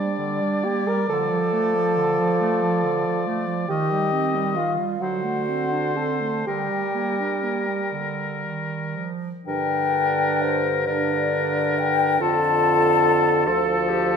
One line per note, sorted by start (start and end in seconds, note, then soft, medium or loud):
0.00 0.19 G3 soft
0.00 1.05 G3 medium
0.00 0.66 D4 medium
0.00 0.66 D5 medium
0.00 3.66 D5 medium
0.18 0.42 D3 soft
0.41 0.65 G3 medium
0.64 0.88 A#3 medium
0.64 0.89 G4 medium
0.64 0.90 G5 medium
0.86 1.08 G3 medium
0.86 1.09 A#4 medium
0.86 1.09 A#5 medium
1.09 1.32 D3 medium
1.09 3.65 F3 medium
1.09 3.22 A4 medium
1.09 3.23 A5 medium
1.31 1.54 F3 medium
1.53 1.76 A3 medium
1.75 1.99 F3 medium
1.97 2.21 D3 medium
2.19 2.42 F3 medium
2.41 2.64 A3 medium
2.62 2.85 F3 medium
2.83 3.07 D3 medium
3.06 3.28 F3 medium
3.27 3.49 A3 medium
3.48 3.68 F3 medium
3.68 3.92 D#3 medium
3.68 4.71 D#3 medium
3.68 4.58 G4 medium
3.68 4.72 D#5 medium
3.68 4.57 G5 medium
3.91 4.14 G3 medium
4.12 4.36 C4 medium
4.35 4.58 G3 medium
4.55 4.80 D#3 medium
4.55 5.03 F4 medium
4.55 5.02 F5 medium
4.79 4.99 G3 medium
5.00 6.43 D3 medium
5.00 5.25 F#3 medium
5.00 5.98 F#4 medium
5.00 6.43 C5 medium
5.00 5.98 F#5 medium
5.24 5.50 A3 soft
5.48 5.73 C4 soft
5.72 5.98 D4 soft
5.96 6.21 C4 soft
5.96 6.46 A4 medium
5.96 6.45 A5 medium
6.20 6.45 A3 soft
6.46 6.72 D3 soft
6.46 9.08 G3 soft
6.46 7.92 G4 medium
6.46 9.09 A#4 soft
6.46 7.91 G5 medium
6.70 6.96 G3 soft
6.95 7.21 A#3 soft
7.20 7.44 D4 soft
7.43 7.70 A#3 soft
7.69 7.91 G3 soft
7.92 8.46 D3 soft
8.44 8.97 D#3 soft
8.96 9.30 F3 soft
9.45 12.17 G2 medium
9.45 10.83 D3 medium
9.45 10.82 D4 medium
9.45 10.83 A#4 medium
9.45 10.43 G5 loud
10.42 10.88 C5 medium
10.87 12.18 D3 medium
10.87 12.18 D4 medium
10.87 12.23 A#4 medium
10.87 11.80 D5 medium
11.79 12.21 G5 loud
12.20 13.49 F2 medium
12.20 13.49 D3 medium
12.20 13.49 F4 medium
12.20 13.45 A4 medium
12.20 14.17 A5 loud
13.46 14.17 D2 medium
13.46 14.17 F3 medium
13.46 14.17 A4 medium
13.46 13.90 A4 medium
13.89 14.17 G4 medium